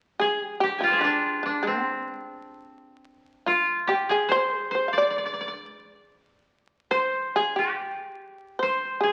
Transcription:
0.19 shamisen G#4, koto G#4
0.42 shamisen G4
0.60 shamisen G4, koto G4
0.78 shamisen F4, koto G5 G#5
0.83 koto F4 D5 F5
0.90 koto G#4 C5
0.98 shamisen D4, koto F4 G4
1.04 koto D4
1.43 shamisen D4, koto D4
1.63 shamisen C4
1.67 koto C4
3.46 shamisen F4, koto F4
3.87 koto G4, shamisen G4
4.09 koto G#4, shamisen G#4
4.29 koto C5, shamisen C5
4.58 shamisen G#4
4.71 koto C5, shamisen C5
4.88 shamisen F5
4.93 koto D5
4.98 shamisen D5, koto D5
5.10 koto D5
5.18 koto D5
5.26 koto D5
5.34 koto D5
5.41 koto D5
5.48 koto D5
6.91 koto C5, shamisen C5
7.36 shamisen G#4, koto G#4
7.56 shamisen G4, koto G4
8.59 shamisen C5, koto C5
9.01 shamisen G#4, koto G#4

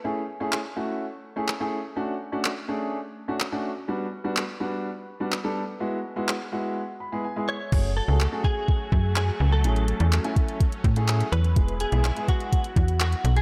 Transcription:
0.04 grand piano A3 C#4 E4 G#4
0.40 grand piano A3 C#4 E4 G#4
0.53 clap
0.76 grand piano A3 C#4 E4 F#4
1.36 grand piano A3 C#4 E4 G#4
1.48 clap
1.60 grand piano A3 C#4 E4 G#4
1.96 grand piano A3 C#4 D4 F#4
2.32 grand piano A3 C#4 D4 F#4
2.45 clap
2.68 grand piano A3 C#4 D4 G#4
3.28 grand piano A3 C#4 D4 F#4
3.40 clap
3.52 grand piano A3 C#4 D4 F#4
3.88 grand piano G3 B3 D4 F#4
4.24 grand piano G3 B3 D4 F#4
4.37 clap
4.60 grand piano G3 B3 D4 F#4
5.20 grand piano G3 B3 D4 F#4
5.32 clap
5.44 grand piano G3 B3 D4 A4
5.80 grand piano G#3 B3 E4 F#4
6.16 grand piano G#3 B3 E4 F#4
6.29 clap
6.52 grand piano G#3 B3 E4 F#4
7.00 grand piano B5
7.12 grand piano G#3 B3 E4 G#4
7.24 grand piano G#5
7.36 grand piano G#3 B3 E4 G#4
7.48 clean electric guitar C#5, grand piano E5
7.72 fm bass F#1, supersaw synth F#3 A3 F#4, grand piano A3 C#4 F#4 G#4, kick, crash
7.97 clean electric guitar A4
8.08 fm bass C#2, grand piano A3 C#4 F#4 G#4
8.20 clap
8.32 grand piano A3 C#4 F#4 G#4
8.44 clean electric guitar G#4, kick
8.68 kick
8.92 fm bass F#2, kick
9.16 clean electric guitar G#4, clap
9.40 fm bass C#2
9.52 clean electric guitar A4
9.64 fm bass A1, grand piano A3 C#4 E4 G#4, supersaw synth C#4, closed hi-hat
9.76 closed hi-hat
9.88 closed hi-hat
10.00 fm bass E2, grand piano A3 C#4 E4 G#4, closed hi-hat
10.12 clap, closed hi-hat
10.24 grand piano A3 C#4 E4 G#5, closed hi-hat
10.36 kick, closed hi-hat
10.48 closed hi-hat
10.60 kick, closed hi-hat
10.72 closed hi-hat
10.84 fm bass A2, kick, closed hi-hat
10.96 grand piano A3 C#4 E4 G#4, closed hi-hat
11.08 clap, closed hi-hat
11.21 closed hi-hat
11.32 fm bass E2, clean electric guitar B4, closed hi-hat
11.44 closed hi-hat
11.56 fm bass E1, grand piano G#3 B3 E4 G#4, supersaw synth B3 E4, kick, closed hi-hat
11.68 closed hi-hat
11.80 clean electric guitar G#4, closed hi-hat
11.92 fm bass B1, grand piano G#3 B3 E4 G#4, closed hi-hat
12.04 clap, closed hi-hat
12.16 grand piano G#3 B3 E4 G#4, closed hi-hat
12.28 clean electric guitar F#4, kick, closed hi-hat
12.40 closed hi-hat
12.53 kick, closed hi-hat
12.64 closed hi-hat
12.76 fm bass E2, kick, closed hi-hat
12.88 closed hi-hat
13.00 clean electric guitar F#4, clap, closed hi-hat
13.13 closed hi-hat
13.24 fm bass B1, closed hi-hat
13.37 clean electric guitar G#4, closed hi-hat

